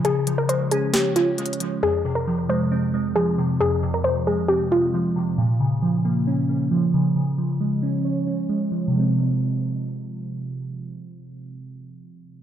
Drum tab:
HH |x--x--x--x--x--x--xxxx--|------------------------|------------------------|------------------------|
SD |------------o-----------|------------------------|------------------------|------------------------|

HH |------------------------|------------------------|------------------------|
SD |------------------------|------------------------|------------------------|